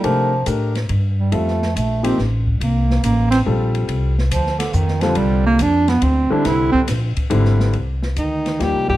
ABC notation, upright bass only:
X:1
M:3/4
L:1/8
Q:"Swing" 1/4=140
K:Dphr
V:1 name="Upright bass" clef=bass
C,2 A,,2 G,,2 | F,,2 B,,,2 A,,,2 | C,,2 A,,,2 B,,,2 | C,,2 D,,2 F,,2 |
C,,2 F,,2 D,, z | C,, z B,,, z _A,,,2 | [K:Fdor] C,,2 D,,2 (3E,, C,, A,,, |]